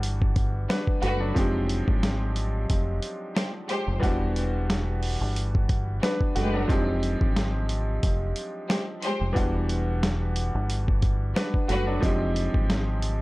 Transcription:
0.00 0.66 G1 loud
0.00 1.31 E3 medium
0.00 0.64 G3 medium
0.00 0.65 B3 medium
0.00 0.65 D4 medium
0.00 0.66 F#4 medium
0.00 closed hi-hat medium
0.22 kick loud
0.36 kick loud
0.36 closed hi-hat medium
0.69 0.85 G3 medium
0.69 1.01 D4 medium
0.69 0.85 F#4 medium
0.69 0.85 B4 medium
0.69 1.01 B4 medium
0.69 snare loud
0.69 closed hi-hat loud
0.87 kick loud
1.02 1.32 F#1 loud
1.02 1.31 G3 loud
1.02 1.20 A3 medium
1.02 1.20 F#4 medium
1.02 1.31 F#4 loud
1.02 1.31 B4 loud
1.02 closed hi-hat medium
1.20 1.52 F#3 medium
1.20 1.52 D4 medium
1.34 1.81 F1 loud
1.34 3.98 F3 medium
1.34 3.98 G#3 medium
1.34 3.99 C4 medium
1.34 3.99 D#4 medium
1.34 kick loud
1.34 closed hi-hat medium
1.38 4.00 G4 medium
1.69 closed hi-hat medium
1.88 2.65 G#1 medium
1.88 kick loud
2.03 snare loud
2.03 closed hi-hat medium
2.36 closed hi-hat medium
2.70 2.99 F1 loud
2.70 kick medium
2.70 closed hi-hat loud
3.02 closed hi-hat medium
3.35 3.51 G#3 medium
3.35 3.51 G4 medium
3.35 3.51 C5 loud
3.35 snare loud
3.35 closed hi-hat medium
3.69 3.98 G#3 loud
3.69 3.97 G4 loud
3.69 3.97 C5 loud
3.69 closed hi-hat medium
3.88 4.01 F1 loud
3.99 5.17 E1 loud
3.99 6.64 E3 medium
3.99 5.98 G3 medium
3.99 5.98 B3 medium
3.99 5.99 D4 medium
3.99 kick loud
3.99 closed hi-hat medium
4.04 5.99 F#4 medium
4.36 closed hi-hat medium
4.70 snare loud
4.70 closed hi-hat medium
5.03 open hi-hat medium
5.21 5.99 G1 loud
5.36 closed hi-hat loud
5.55 kick loud
5.69 kick loud
5.69 closed hi-hat medium
6.02 6.18 G3 medium
6.02 6.35 D4 medium
6.02 6.18 F#4 medium
6.02 6.18 B4 medium
6.02 6.34 B4 medium
6.02 snare loud
6.02 closed hi-hat loud
6.21 kick medium
6.35 6.65 F#1 loud
6.35 6.80 G#3 loud
6.35 6.53 A3 medium
6.35 6.53 F#4 medium
6.35 6.80 G4 loud
6.35 6.80 B4 loud
6.35 closed hi-hat medium
6.53 6.86 F#3 medium
6.53 6.86 D4 medium
6.67 7.15 F1 loud
6.67 9.31 F3 medium
6.67 9.32 G#3 medium
6.67 9.32 C4 medium
6.67 9.33 D#4 medium
6.67 kick loud
6.67 closed hi-hat medium
6.72 9.33 G4 medium
7.03 closed hi-hat medium
7.21 7.99 G#1 medium
7.21 kick loud
7.36 snare loud
7.36 closed hi-hat medium
7.69 closed hi-hat medium
8.03 8.32 F1 loud
8.03 kick loud
8.03 closed hi-hat loud
8.36 closed hi-hat medium
8.69 8.85 G#3 medium
8.69 8.85 G4 medium
8.69 8.85 C5 loud
8.69 snare loud
8.69 closed hi-hat loud
9.02 9.32 G#3 loud
9.02 9.32 G4 medium
9.02 9.32 C5 loud
9.02 closed hi-hat medium
9.21 9.34 F1 loud
9.33 10.51 E1 loud
9.33 11.97 E3 medium
9.33 11.31 G3 medium
9.33 11.32 B3 medium
9.33 11.32 D4 medium
9.33 kick loud
9.33 closed hi-hat medium
9.37 11.33 F#4 medium
9.69 closed hi-hat medium
10.03 snare loud
10.03 closed hi-hat medium
10.36 closed hi-hat medium
10.55 11.32 G1 loud
10.70 closed hi-hat loud
10.88 kick loud
11.02 kick loud
11.02 closed hi-hat medium
11.35 11.51 G3 medium
11.35 11.68 D4 medium
11.35 11.51 F#4 medium
11.35 11.51 B4 medium
11.35 11.68 B4 medium
11.35 snare loud
11.35 closed hi-hat medium
11.54 kick loud
11.68 11.99 F#1 loud
11.68 11.98 G3 loud
11.68 11.87 A3 medium
11.68 11.86 F#4 medium
11.68 11.98 F#4 loud
11.68 11.98 B4 loud
11.68 closed hi-hat medium
11.87 12.19 F#3 medium
11.87 12.19 D4 medium
12.00 12.48 F1 loud
12.00 13.22 F3 medium
12.00 13.22 G#3 medium
12.00 13.22 C4 medium
12.00 13.22 D#4 medium
12.00 kick loud
12.00 closed hi-hat medium
12.05 13.22 G4 medium
12.36 closed hi-hat medium
12.54 13.22 G#1 medium
12.54 kick loud
12.70 snare loud
12.70 closed hi-hat medium
13.02 closed hi-hat medium

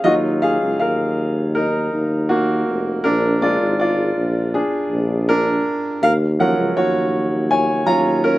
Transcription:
0.04 0.58 D#2 loud
0.04 1.14 F#3 medium
0.04 1.14 D#4 medium
0.04 1.14 F4 medium
0.04 0.14 F#4 medium
0.04 0.13 D#5 medium
0.42 0.78 G#4 medium
0.42 0.78 F5 medium
0.62 0.82 C#2 medium
0.79 1.89 D#2 medium
0.79 1.52 A#4 medium
0.79 1.57 F5 medium
1.55 2.27 D#4 medium
1.55 2.26 A#4 medium
1.93 2.64 D#2 medium
2.29 3.01 A#3 medium
2.29 3.00 F#4 medium
2.68 3.03 F1 medium
3.04 3.58 A#1 medium
3.04 3.40 D4 medium
3.04 3.43 A#4 medium
3.42 4.50 G#3 soft
3.42 4.50 D4 soft
3.42 3.78 F4 medium
3.42 3.77 D5 medium
3.61 4.13 G#1 medium
3.79 4.51 F4 medium
3.79 4.50 D5 medium
4.17 4.62 A#1 medium
4.54 5.25 D4 medium
4.54 5.25 G#4 medium
4.91 5.62 A#1 loud
5.29 5.99 D4 medium
5.29 6.03 A#4 loud
6.02 6.54 D#2 loud
6.02 6.12 A#4 medium
6.02 6.11 F5 loud
6.40 6.89 F3 medium
6.40 6.88 F#3 medium
6.40 6.89 C#4 soft
6.40 6.49 A#4 medium
6.40 6.48 F#5 medium
6.58 6.75 C#2 medium
6.76 7.83 D#2 medium
6.76 7.47 F#4 medium
6.76 7.50 C#5 medium
7.51 7.85 C#5 medium
7.51 7.88 G#5 medium
7.86 8.38 D#2 medium
7.86 8.20 F#3 soft
7.86 8.20 C#4 soft
7.86 8.20 F4 medium
7.86 7.96 C#5 medium
7.86 7.95 A#5 medium
8.24 8.38 C#4 medium
8.24 8.38 A#4 medium

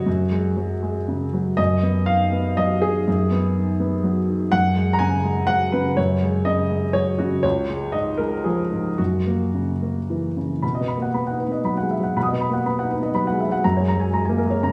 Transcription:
0.00 0.21 F#3 soft
0.00 1.57 F#4 medium
0.06 1.54 F#2 medium
0.32 0.71 G#3 soft
0.57 0.97 F#3 soft
0.82 1.23 G#3 soft
1.08 1.49 C#3 soft
1.33 1.58 F#3 soft
1.57 3.03 F#2 medium
1.57 2.06 D#5 medium
1.83 2.22 B3 soft
2.06 2.47 D#3 soft
2.06 2.57 F5 medium
2.32 2.72 B3 soft
2.57 2.97 F#3 soft
2.57 2.82 D#5 medium
2.82 3.22 D#3 soft
2.82 4.52 G#4 medium
3.07 4.49 F#2 medium
3.31 3.70 B3 soft
3.57 3.95 D#3 soft
3.80 4.19 B3 soft
4.04 4.43 F#3 soft
4.29 4.53 D#3 soft
4.52 5.93 F#2 medium
4.52 4.93 F#5 medium
4.76 5.14 G#3 soft
4.93 5.00 A#5 medium
4.99 5.39 C#3 soft
4.99 5.48 G#5 medium
5.23 5.63 G#3 soft
5.47 5.88 F#3 soft
5.47 5.72 F#5 medium
5.72 6.12 C#3 soft
5.72 5.97 B4 medium
5.97 7.40 F#2 medium
5.97 6.45 C#5 medium
6.23 6.61 G#3 soft
6.45 6.85 C#3 soft
6.45 6.94 D#5 medium
6.70 7.09 G#3 soft
6.93 7.34 F#3 soft
6.93 7.19 C#5 medium
7.19 7.44 C#3 soft
7.19 7.44 F#4 medium
7.43 8.95 C#2 medium
7.43 7.93 C#5 medium
7.69 8.09 G#3 soft
7.92 8.34 G#2 soft
7.92 8.18 D#5 medium
8.18 8.61 G#3 soft
8.18 8.44 A#4 medium
8.44 8.88 F3 soft
8.44 8.98 G#4 medium
8.71 8.99 G#2 soft
8.98 10.59 F#2 soft
8.98 10.36 F#4 medium
9.27 9.71 A#3 soft
9.54 9.98 C#3 soft
9.82 10.25 A#3 soft
10.10 10.52 E3 soft
10.37 10.63 C#3 soft
10.62 12.12 B2 soft
10.62 10.83 B5 soft
10.75 10.96 D#5 soft
10.81 11.08 B3 soft
10.88 11.09 B5 soft
10.97 11.14 A#3 soft
11.02 11.22 F#5 soft
11.14 11.41 B3 soft
11.14 11.35 B5 soft
11.27 11.58 D#4 soft
11.27 11.47 F#5 soft
11.39 11.60 B4 soft
11.48 11.76 B3 soft
11.48 11.73 D#5 soft
11.64 11.92 F#3 soft
11.64 11.86 B5 soft
11.77 11.99 G#3 soft
11.77 11.98 F#5 soft
11.91 12.04 E5 soft
12.00 12.26 F#3 soft
12.00 12.15 F#5 soft
12.17 13.60 B2 soft
12.17 12.52 F#5 soft
12.17 12.18 B5 soft
12.17 12.39 B5 soft
12.23 13.63 D#6 soft
12.29 12.49 D#5 soft
12.33 12.59 B3 soft
12.41 12.61 B5 soft
12.50 12.66 A#3 soft
12.50 12.73 F#5 soft
12.66 12.92 B3 soft
12.66 12.86 B5 soft
12.79 13.09 D#4 soft
12.79 12.98 F#5 soft
12.91 13.10 B4 soft
13.00 13.25 B3 soft
13.00 13.22 D#5 soft
13.15 13.41 F#3 soft
13.15 13.34 B5 soft
13.27 13.47 F#5 soft
13.32 13.48 G#3 soft
13.40 13.52 E5 soft
13.49 13.64 F#3 soft
13.49 13.64 F#5 soft
13.64 14.72 F#2 medium
13.64 13.83 A#5 medium
13.77 14.06 G#3 soft
13.77 13.95 C#5 medium
13.88 14.07 A#5 medium
13.96 14.12 F#3 soft
13.96 14.19 G#5 medium
14.13 14.39 G#3 soft
14.13 14.32 A#5 soft
14.25 14.56 A#3 soft
14.25 14.45 G#5 medium
14.38 14.58 A#4 soft
14.46 14.72 G#3 soft
14.50 14.70 C#5 soft
14.63 14.72 C#3 soft
14.63 14.72 A#5 medium

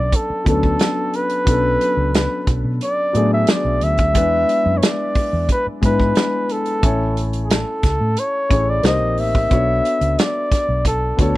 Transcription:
0.00 0.11 B1 medium
0.00 0.44 F#3 medium
0.00 0.45 B3 medium
0.00 0.46 C#4 medium
0.00 0.47 D4 medium
0.00 0.48 A4 medium
0.00 0.17 D5 medium
0.12 0.48 A4 loud
0.12 kick medium
0.12 closed hi-hat medium
0.30 muted fingered electric bass stroke soft
0.44 0.75 D2 medium
0.44 1.13 F#3 medium
0.44 1.14 B3 medium
0.44 1.14 C#4 medium
0.44 1.15 D4 medium
0.44 1.15 A4 medium
0.44 kick loud
0.44 closed hi-hat medium
0.49 1.18 A4 medium
0.63 kick medium
0.79 snare loud
0.79 closed hi-hat medium
1.13 2.15 B4 loud
1.13 closed hi-hat medium
1.29 closed hi-hat medium
1.45 1.76 B1 loud
1.45 2.37 F#3 medium
1.45 2.37 B3 medium
1.45 2.38 C#4 medium
1.45 2.38 D4 medium
1.45 2.39 A4 medium
1.45 kick loud
1.45 closed hi-hat medium
1.81 closed hi-hat medium
1.97 2.26 C#2 loud
2.14 2.53 B4 medium
2.14 snare loud
2.14 closed hi-hat medium
2.47 2.62 B1 medium
2.47 kick medium
2.47 closed hi-hat medium
2.64 2.79 B2 medium
2.81 3.29 D5 loud
2.81 closed hi-hat medium
3.13 3.44 A2 medium
3.13 3.82 F#3 medium
3.13 3.83 A3 medium
3.13 3.82 B3 medium
3.13 3.83 D4 medium
3.13 3.84 G#4 medium
3.13 closed hi-hat medium
3.33 3.53 E5 loud
3.47 snare loud
3.47 closed hi-hat medium
3.51 3.85 D5 loud
3.65 3.79 B1 medium
3.81 4.15 D2 medium
3.81 4.79 E5 loud
3.81 closed hi-hat medium
3.97 kick loud
3.97 closed hi-hat soft
4.14 4.44 E2 medium
4.14 5.05 G#3 medium
4.14 5.06 B3 medium
4.14 5.06 D4 medium
4.14 5.07 E4 medium
4.14 5.07 B4 medium
4.14 kick loud
4.14 closed hi-hat medium
4.49 closed hi-hat medium
4.66 4.80 F#2 loud
4.78 4.86 C#5 medium
4.82 5.50 D5 loud
4.82 snare loud
4.82 closed hi-hat loud
5.15 muted fingered electric bass stroke soft
5.15 kick medium
5.15 open hi-hat soft
5.33 5.47 E2 medium
5.49 5.67 B4 loud
5.49 kick medium
5.49 closed hi-hat medium
5.67 muted fingered electric bass stroke soft
5.81 6.12 G#2 medium
5.81 6.50 G#3 medium
5.81 6.50 B3 medium
5.81 6.51 D4 medium
5.81 6.51 E4 medium
5.81 6.52 B4 medium
5.81 kick medium
5.81 closed hi-hat medium
5.86 6.54 B4 medium
6.00 kick medium
6.15 snare loud
6.15 closed hi-hat medium
6.49 7.24 A4 loud
6.49 closed hi-hat medium
6.66 closed hi-hat medium
6.82 7.63 A1 loud
6.82 7.73 A3 medium
6.82 7.74 C#4 medium
6.82 7.74 E4 medium
6.82 7.75 C#5 medium
6.82 7.75 G#5 medium
6.82 kick loud
6.82 closed hi-hat medium
7.17 closed hi-hat medium
7.33 closed hi-hat medium
7.44 7.54 G#4 medium
7.50 8.21 A4 medium
7.50 snare loud
7.50 closed hi-hat loud
7.83 7.98 C#2 medium
7.83 kick loud
7.83 snare soft
7.83 closed hi-hat medium
8.00 8.15 A2 medium
8.17 8.71 C#5 loud
8.17 closed hi-hat medium
8.49 8.80 A1 medium
8.49 8.83 A3 medium
8.49 8.84 C#4 medium
8.49 8.84 E4 medium
8.49 8.85 G#4 medium
8.49 8.85 C#5 medium
8.49 kick loud
8.49 closed hi-hat medium
8.70 8.85 D5 medium
8.83 9.01 C2 loud
8.83 9.37 A#3 medium
8.83 9.37 C4 medium
8.83 9.38 D#4 medium
8.83 9.38 G4 medium
8.83 9.39 C5 medium
8.83 9.21 D#5 loud
8.83 snare loud
8.83 closed hi-hat medium
9.01 9.18 A#1 medium
9.17 9.46 A1 medium
9.17 10.22 E5 loud
9.17 open hi-hat medium
9.35 kick medium
9.49 9.80 B1 loud
9.49 10.41 B3 medium
9.49 10.41 D4 medium
9.49 10.42 F#4 medium
9.49 10.42 A4 medium
9.49 10.43 C#5 medium
9.49 kick loud
9.49 closed hi-hat medium
9.85 closed hi-hat medium
10.01 10.16 C#2 medium
10.01 closed hi-hat medium
10.19 10.86 D5 loud
10.19 snare loud
10.19 closed hi-hat loud
10.52 muted fingered electric bass stroke soft
10.52 kick loud
10.52 snare soft
10.52 closed hi-hat medium
10.69 11.12 B1 medium
10.85 11.17 A4 medium
10.85 kick medium
10.85 closed hi-hat medium
11.17 11.37 D2 medium
11.17 11.37 B3 medium
11.17 11.37 D4 medium
11.17 11.37 F#4 medium
11.17 11.37 A4 medium
11.17 kick loud
11.17 closed hi-hat medium
11.21 11.37 A4 medium
11.21 11.37 C#5 medium

